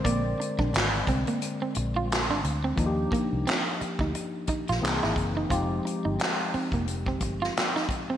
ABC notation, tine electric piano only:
X:1
M:4/4
L:1/8
Q:"Swing 16ths" 1/4=88
K:Eb
V:1 name="Tine electric piano"
d6- d z | [F,B,DEFG]6 [=E,B,C^D^G]2 | [F,A,CEG]8 |]
V:2 name="Tine electric piano" clef=bass
[D,A,C]3 [D,A,C] z4 | z8 | z8 |]